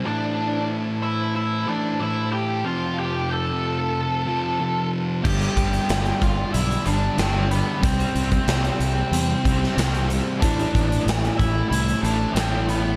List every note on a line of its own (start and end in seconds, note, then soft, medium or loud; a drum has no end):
0.00 2.60 E4 medium
0.00 5.20 C5 medium
0.05 1.66 A2 loud
0.05 1.66 E3 loud
0.05 1.66 A3 loud
0.05 0.68 D4 medium
0.05 0.67 D5 loud
0.05 5.20 A5 medium
1.03 1.34 E4 medium
1.03 1.35 E5 medium
1.36 1.67 E4 medium
1.36 1.69 E5 medium
1.67 1.99 A2 medium
1.67 1.99 E3 medium
1.67 1.98 A3 medium
1.67 1.99 D4 medium
1.67 2.01 D5 medium
2.00 2.63 A2 medium
2.00 2.64 E3 medium
2.00 2.64 A3 medium
2.00 2.32 E4 medium
2.00 2.31 E5 loud
2.31 2.63 G4 medium
2.31 2.66 G5 loud
2.64 4.25 F2 medium
2.64 4.25 C3 loud
2.64 4.25 F3 loud
2.64 5.21 F4 medium
2.64 2.96 F4 medium
2.64 2.98 F5 loud
2.98 3.29 G4 medium
2.98 3.31 G5 loud
3.33 4.90 A4 medium
3.33 4.90 A5 medium
4.26 4.58 F2 medium
4.26 4.58 C3 medium
4.26 4.57 F3 medium
4.60 5.22 F2 medium
4.60 5.23 C3 medium
4.60 5.24 F3 medium
5.23 5.46 G1 medium
5.23 6.84 G2 loud
5.23 6.85 D3 loud
5.23 6.85 G3 loud
5.23 7.82 D4 medium
5.23 6.18 G4 medium
5.23 7.82 D5 medium
5.23 6.21 G5 loud
5.23 7.82 G5 medium
5.23 kick loud
5.23 crash loud
5.41 closed hi-hat soft
5.56 5.78 G1 medium
5.56 kick medium
5.56 closed hi-hat medium
5.73 closed hi-hat soft
5.89 6.11 G1 medium
5.89 snare loud
5.89 closed hi-hat loud
6.05 closed hi-hat soft
6.21 6.43 G1 medium
6.21 6.52 F4 medium
6.21 6.52 F5 loud
6.21 kick medium
6.21 closed hi-hat medium
6.53 6.76 B1 loud
6.53 6.84 E4 medium
6.53 6.87 E5 loud
6.53 closed hi-hat loud
6.71 closed hi-hat medium
6.86 7.08 G1 medium
6.86 7.16 G2 medium
6.86 7.17 D3 medium
6.86 7.17 G3 medium
6.86 7.17 D4 medium
6.86 7.19 D5 loud
6.86 closed hi-hat medium
7.17 7.61 G1 medium
7.17 7.81 G2 medium
7.17 7.80 D3 medium
7.17 7.81 G3 medium
7.17 7.49 C4 medium
7.17 7.49 C5 medium
7.17 snare loud
7.17 closed hi-hat loud
7.51 7.81 B3 medium
7.51 7.81 B4 medium
7.51 closed hi-hat medium
7.81 8.04 C2 loud
7.81 9.42 C3 medium
7.81 12.96 C3 medium
7.81 9.43 G3 loud
7.81 9.43 C4 loud
7.81 10.06 C4 medium
7.81 10.40 G4 medium
7.81 12.96 E5 medium
7.81 kick loud
7.81 closed hi-hat loud
7.85 10.06 C5 medium
8.00 closed hi-hat medium
8.15 8.37 C2 loud
8.15 closed hi-hat medium
8.31 kick medium
8.31 closed hi-hat medium
8.48 8.69 C2 medium
8.48 snare loud
8.48 closed hi-hat loud
8.64 closed hi-hat medium
8.80 9.01 C2 medium
8.80 closed hi-hat medium
9.11 9.33 E2 loud
9.11 closed hi-hat loud
9.44 9.66 C2 medium
9.44 9.75 C3 medium
9.44 9.76 G3 medium
9.44 9.78 C4 medium
9.44 kick medium
9.44 closed hi-hat medium
9.63 snare soft
9.76 10.20 C2 medium
9.76 10.40 C3 medium
9.76 10.40 G3 medium
9.76 10.44 C4 medium
9.76 snare loud
9.76 closed hi-hat loud
9.94 closed hi-hat medium
10.10 closed hi-hat medium
10.40 10.64 A1 loud
10.40 12.01 A2 medium
10.40 12.02 E3 loud
10.40 11.02 D4 loud
10.40 12.96 A4 medium
10.40 11.02 D5 loud
10.40 kick loud
10.40 closed hi-hat loud
10.44 12.03 A3 loud
10.59 closed hi-hat medium
10.75 10.96 A1 loud
10.75 kick medium
10.75 closed hi-hat medium
10.92 closed hi-hat soft
11.07 11.28 A1 loud
11.07 snare loud
11.07 closed hi-hat loud
11.24 closed hi-hat medium
11.37 11.61 A1 medium
11.37 11.68 E4 medium
11.37 11.69 E5 loud
11.37 kick medium
11.37 closed hi-hat medium
11.69 11.92 C2 loud
11.69 12.00 E4 medium
11.69 12.04 E5 loud
11.69 closed hi-hat loud
11.88 closed hi-hat medium
12.01 12.25 A1 loud
12.01 12.35 E3 medium
12.01 12.34 A3 medium
12.01 12.33 D4 medium
12.01 12.35 D5 loud
12.01 closed hi-hat medium
12.06 12.35 A2 medium
12.34 12.96 A1 loud
12.34 12.96 A2 medium
12.34 12.96 E3 medium
12.34 12.65 C4 medium
12.34 12.68 C5 loud
12.34 snare loud
12.34 closed hi-hat loud
12.38 12.96 A3 loud
12.68 12.96 B3 medium
12.68 12.96 B4 medium
12.68 closed hi-hat medium